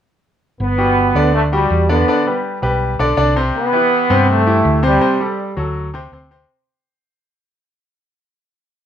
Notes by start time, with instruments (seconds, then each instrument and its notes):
0.60 fingered electric bass G1, trombone section B3
0.78 grand piano G3 F#4 G4
1.15 fingered electric bass D2, grand piano D3 D4 D5
1.35 trombone section A3
1.52 grand piano G3 F#4 G4, trombone section G3
1.70 fingered electric bass E2
1.89 grand piano D3 D4 D5, trombone section B3
2.08 grand piano D3 D4 D5
2.26 grand piano G3 G4 B4
2.62 fingered electric bass B1, grand piano G3 G4 B4
2.99 fingered electric bass B1, grand piano D3 D4 D5
3.17 fingered electric bass C2, grand piano D3 D4 D5
3.36 grand piano C3 C4 C5
3.55 trombone section B3
3.72 grand piano E3 E4 G4
4.10 fingered electric bass G2, grand piano C3 C4 C5
4.30 trombone section A3
4.47 grand piano E3 E4 G4
4.65 fingered electric bass D2
4.83 grand piano C3 C4 C5, trombone section G3
5.01 grand piano C3 C4 C5
5.20 grand piano G3 G4 A4
5.57 fingered electric bass D2, grand piano F#3 F#4 A4
5.94 grand piano C3 C4 C5
6.12 fingered electric bass D2, grand piano C3 C4 C5
6.31 grand piano C3 C4 C5